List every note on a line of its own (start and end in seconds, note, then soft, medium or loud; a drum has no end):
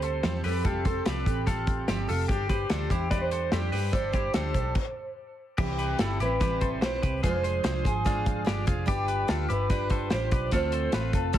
0.00 0.20 D2 medium
0.00 0.24 G3 medium
0.00 0.24 C4 soft
0.00 0.25 G4 medium
0.00 0.24 A4 medium
0.00 0.23 A4 soft
0.00 0.41 C5 medium
0.00 0.22 C5 medium
0.00 closed hi-hat medium
0.23 0.41 E2 loud
0.23 0.44 F3 medium
0.23 0.44 G3 medium
0.23 0.45 C4 medium
0.23 0.45 G4 medium
0.23 0.44 A4 medium
0.23 0.43 A4 medium
0.23 0.44 C5 medium
0.23 snare medium
0.23 closed hi-hat medium
0.44 0.62 F2 medium
0.44 0.65 C4 soft
0.44 0.65 G4 medium
0.44 0.65 G4 soft
0.44 0.65 A4 medium
0.44 0.66 A4 medium
0.44 0.65 B4 medium
0.44 open hi-hat medium
0.65 1.00 F1 loud
0.65 0.85 F3 medium
0.65 0.85 G3 medium
0.65 0.86 C4 medium
0.65 0.86 F4 medium
0.65 0.87 G4 medium
0.65 0.86 G4 medium
0.65 0.85 A4 medium
0.65 0.84 A4 medium
0.65 kick loud
0.65 closed hi-hat medium
0.85 1.06 C4 soft
0.85 1.06 G4 soft
0.85 1.06 A4 soft
0.85 1.06 A4 medium
0.85 1.65 A4 medium
0.85 1.05 C5 medium
0.85 kick loud
0.85 closed hi-hat medium
1.05 1.23 C2 medium
1.05 1.26 F3 medium
1.05 1.27 G3 medium
1.05 1.27 C4 medium
1.05 1.45 G4 medium
1.05 1.27 G4 medium
1.05 1.25 A4 medium
1.05 1.44 B4 medium
1.05 snare loud
1.05 closed hi-hat medium
1.26 1.85 A1 medium
1.26 1.46 C4 soft
1.26 1.48 G4 soft
1.26 1.47 A4 medium
1.26 kick medium
1.26 closed hi-hat medium
1.46 1.88 G3 medium
1.46 1.89 C4 medium
1.46 1.86 F4 medium
1.46 1.90 G4 medium
1.46 1.85 A4 medium
1.46 1.89 A4 medium
1.46 kick loud
1.46 closed hi-hat medium
1.67 kick medium
1.67 closed hi-hat medium
1.88 2.06 G1 loud
1.88 2.09 F3 medium
1.88 2.09 G3 loud
1.88 2.09 C4 medium
1.88 2.08 G4 medium
1.88 2.06 A4 loud
1.88 snare medium
1.88 closed hi-hat medium
2.07 2.26 F1 medium
2.07 2.29 C4 soft
2.07 2.29 F4 medium
2.07 2.29 G4 medium
2.07 2.29 A4 medium
2.07 2.28 A4 medium
2.07 open hi-hat medium
2.28 2.64 G1 loud
2.28 2.50 G3 medium
2.28 2.50 D4 medium
2.28 2.49 G4 medium
2.28 2.50 G4 medium
2.28 2.48 C5 medium
2.28 kick loud
2.28 closed hi-hat medium
2.49 2.70 D4 soft
2.49 3.08 G4 medium
2.49 2.69 G4 medium
2.49 2.70 G4 soft
2.49 2.70 B4 medium
2.49 2.70 C5 medium
2.49 kick medium
2.49 closed hi-hat medium
2.70 2.88 D2 medium
2.70 2.91 G3 medium
2.70 2.91 D4 medium
2.70 2.91 G4 medium
2.70 2.90 A4 medium
2.70 2.90 C5 medium
2.70 snare loud
2.70 closed hi-hat medium
2.90 3.49 E2 medium
2.90 3.10 E4 soft
2.90 3.10 G4 medium
2.90 3.12 G4 medium
2.90 3.12 C5 medium
2.90 kick medium
2.90 closed hi-hat medium
2.94 3.11 D4 soft
3.11 3.52 G3 medium
3.11 3.52 D4 medium
3.11 3.32 G4 medium
3.11 3.53 G4 medium
3.11 3.31 B4 medium
3.11 3.54 C5 medium
3.11 3.21 D5 loud
3.11 kick medium
3.11 snare soft
3.11 closed hi-hat medium
3.21 3.53 C5 medium
3.31 3.53 A4 medium
3.31 3.51 C5 medium
3.31 closed hi-hat medium
3.52 3.70 F2 medium
3.52 3.73 G3 medium
3.52 3.73 D4 medium
3.52 3.72 G4 medium
3.52 3.73 G4 medium
3.52 3.61 A4 medium
3.52 3.72 C5 medium
3.52 3.71 C5 medium
3.52 snare loud
3.52 closed hi-hat medium
3.62 3.94 G4 medium
3.72 3.90 G2 medium
3.72 3.92 D4 soft
3.72 3.93 G4 medium
3.72 3.93 G4 soft
3.72 3.93 B4 medium
3.72 3.93 C5 medium
3.72 open hi-hat medium
3.93 4.28 G1 loud
3.93 4.14 G3 medium
3.93 4.14 D4 medium
3.93 4.13 G4 medium
3.93 4.14 A4 medium
3.93 5.13 C5 medium
3.93 4.11 C5 medium
3.93 kick loud
3.93 closed hi-hat medium
4.12 4.34 D4 soft
4.12 4.35 E4 medium
4.12 4.35 G4 soft
4.12 4.34 G4 medium
4.12 4.34 C5 medium
4.12 kick loud
4.12 closed hi-hat medium
4.34 4.53 D2 medium
4.34 4.55 G3 medium
4.34 4.56 D4 medium
4.34 4.74 D4 medium
4.34 4.55 G4 medium
4.34 4.73 A4 medium
4.34 4.53 C5 medium
4.34 snare loud
4.34 closed hi-hat loud
4.54 4.74 B1 medium
4.54 4.77 D4 soft
4.54 4.77 G4 medium
4.54 4.75 C5 medium
4.54 kick medium
4.54 closed hi-hat medium
4.75 kick loud
4.75 crash medium
5.58 5.93 C2 loud
5.58 5.99 C3 medium
5.58 5.99 E3 medium
5.58 5.98 G3 medium
5.58 5.99 C4 medium
5.58 5.78 E4 medium
5.58 6.00 E4 medium
5.58 5.78 G4 medium
5.58 6.22 G4 loud
5.58 6.00 B4 medium
5.58 kick loud
5.58 crash medium
5.79 5.99 G4 medium
5.79 5.99 B4 medium
5.79 closed hi-hat medium
5.99 6.17 G1 medium
5.99 6.20 G3 medium
5.99 6.20 C4 medium
5.99 6.20 E4 medium
5.99 6.20 A4 medium
5.99 6.19 B4 medium
5.99 snare loud
5.99 closed hi-hat medium
6.20 6.82 A1 loud
6.20 6.40 G3 soft
6.20 6.41 C4 soft
6.20 6.41 E4 soft
6.20 6.40 E4 medium
6.20 6.40 G4 medium
6.20 6.41 B4 soft
6.20 6.79 B4 loud
6.20 closed hi-hat medium
6.40 6.82 C3 medium
6.40 6.82 E3 medium
6.40 6.80 G3 medium
6.40 6.82 C4 medium
6.40 6.83 E4 medium
6.40 6.62 G4 medium
6.40 6.61 B4 medium
6.40 6.83 B4 medium
6.40 kick loud
6.40 snare soft
6.40 closed hi-hat loud
6.61 6.82 A4 medium
6.61 6.80 C5 medium
6.61 kick medium
6.61 closed hi-hat medium
6.81 6.99 B1 loud
6.81 7.02 G3 medium
6.81 7.03 C4 medium
6.81 7.03 E4 medium
6.81 7.01 G4 medium
6.81 7.02 B4 medium
6.81 7.02 C5 medium
6.81 7.23 C5 medium
6.81 snare loud
6.81 closed hi-hat medium
7.02 7.20 C2 medium
7.02 7.23 G3 soft
7.02 7.24 C4 soft
7.02 7.24 E4 soft
7.02 7.23 G4 medium
7.02 7.23 B4 medium
7.02 7.23 B4 soft
7.02 kick loud
7.02 closed hi-hat medium
7.23 7.58 F1 loud
7.23 8.04 F3 medium
7.23 7.62 G#3 medium
7.23 7.64 D4 medium
7.23 7.44 F4 medium
7.23 7.66 F4 medium
7.23 7.43 G#4 medium
7.23 7.87 C5 loud
7.23 7.65 C5 medium
7.23 kick loud
7.23 closed hi-hat medium
7.43 7.64 G#4 medium
7.43 7.63 C5 medium
7.43 closed hi-hat medium
7.63 7.86 C2 medium
7.63 7.84 G#3 medium
7.63 7.85 D4 medium
7.63 7.85 F4 medium
7.63 8.03 G#4 medium
7.63 8.03 C5 medium
7.63 7.83 C5 medium
7.63 snare loud
7.63 closed hi-hat loud
7.84 8.43 G#1 medium
7.84 8.05 D4 soft
7.84 8.05 F4 soft
7.84 8.64 G#4 loud
7.84 8.05 C5 soft
7.84 kick medium
7.84 closed hi-hat medium
8.05 8.89 F3 medium
8.05 8.43 G#3 medium
8.05 8.46 D4 medium
8.05 8.44 F4 medium
8.05 8.47 F4 medium
8.05 8.44 G#4 medium
8.05 8.46 C5 medium
8.05 kick medium
8.05 snare soft
8.05 closed hi-hat medium
8.26 kick medium
8.26 closed hi-hat medium
8.45 8.65 G1 loud
8.45 8.66 G#3 medium
8.45 8.67 D4 medium
8.45 8.68 D4 medium
8.45 8.66 F4 medium
8.45 8.67 G4 medium
8.45 8.65 C5 medium
8.45 snare loud
8.45 closed hi-hat medium
8.66 8.85 F1 medium
8.66 8.86 D4 soft
8.66 8.86 F4 soft
8.66 8.88 F4 medium
8.66 8.87 G#4 medium
8.66 8.87 C5 medium
8.66 kick loud
8.66 closed hi-hat medium
8.86 9.23 G1 medium
8.86 9.26 G3 medium
8.86 9.28 D4 medium
8.86 9.09 D4 medium
8.86 9.29 F4 medium
8.86 9.08 G4 loud
8.86 9.46 G4 loud
8.86 9.29 B4 loud
8.86 kick loud
8.86 closed hi-hat loud
9.08 9.28 G4 medium
9.08 9.29 B4 medium
9.08 closed hi-hat medium
9.27 9.47 D2 medium
9.27 9.49 G3 medium
9.27 9.49 D4 medium
9.27 9.49 F4 medium
9.27 9.50 F4 medium
9.27 9.48 A4 medium
9.27 9.47 B4 medium
9.27 snare loud
9.27 closed hi-hat loud
9.48 10.08 G1 loud
9.48 9.69 D4 soft
9.48 9.70 E4 medium
9.48 9.70 F4 medium
9.48 9.70 G4 medium
9.48 9.69 B4 medium
9.48 10.13 B4 loud
9.48 closed hi-hat medium
9.69 10.09 G3 medium
9.69 10.11 D4 medium
9.69 10.12 F4 medium
9.69 9.90 G4 medium
9.69 9.90 B4 medium
9.69 10.12 B4 medium
9.69 kick medium
9.69 snare soft
9.69 closed hi-hat medium
9.90 10.11 A4 medium
9.90 10.09 C5 medium
9.90 kick medium
9.90 closed hi-hat medium
10.10 10.29 A1 medium
10.10 10.52 G3 medium
10.10 10.52 D4 medium
10.10 10.52 F4 medium
10.10 10.31 G4 medium
10.10 10.31 C5 medium
10.10 10.50 C5 medium
10.10 snare medium
10.10 closed hi-hat medium
10.31 10.50 B1 medium
10.31 10.52 G4 medium
10.31 10.52 B4 medium
10.31 kick loud
10.31 closed hi-hat medium
10.51 10.87 D2 loud
10.51 10.93 D3 medium
10.51 10.91 A3 medium
10.51 10.93 C4 medium
10.51 10.93 F4 medium
10.51 10.73 F4 medium
10.51 10.73 A4 medium
10.51 10.94 A4 medium
10.51 11.15 C5 loud
10.51 kick loud
10.51 closed hi-hat loud
10.72 10.94 A4 medium
10.72 10.93 C5 medium
10.72 closed hi-hat medium
10.92 11.11 A1 medium
10.92 11.32 A3 medium
10.92 11.34 C4 medium
10.92 11.34 F4 medium
10.92 11.33 F4 medium
10.92 11.34 A4 medium
10.92 11.32 B4 medium
10.92 snare loud
10.92 closed hi-hat loud
11.13 11.38 F1 loud
11.13 11.38 A4 loud
11.13 kick medium
11.13 closed hi-hat medium
11.33 11.38 D3 medium
11.33 11.38 A3 medium
11.33 11.38 C4 medium
11.33 11.38 F4 medium
11.33 11.38 A4 medium
11.33 kick loud
11.33 closed hi-hat loud